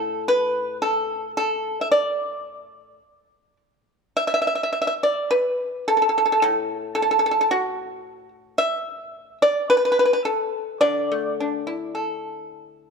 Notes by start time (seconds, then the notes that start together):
Already playing: A2 A4
0.28 B4
0.82 A4
1.37 A4
1.81 E5
1.92 D5
4.17 E5
4.27 E5
4.34 E5
4.42 E5
4.47 E5
4.55 E5
4.63 E5
4.73 E5
4.82 E5
4.87 E5
5.03 D5
5.31 B4
5.88 A4
5.97 A4
6.02 A4
6.09 A4
6.18 A4
6.26 A4
6.32 A4
6.42 A2 A4
6.95 A4
7.02 A4
7.11 A4
7.19 A4
7.26 A4
7.31 A4
7.41 A4
7.51 F#4
8.58 E5
9.42 D5
9.70 B4
9.77 B4
9.85 B4
9.92 B4
9.99 B4
10.05 B4
10.13 B4
10.25 A4
10.81 D3 D5
11.12 A3
11.40 D4
11.67 E4
11.95 A4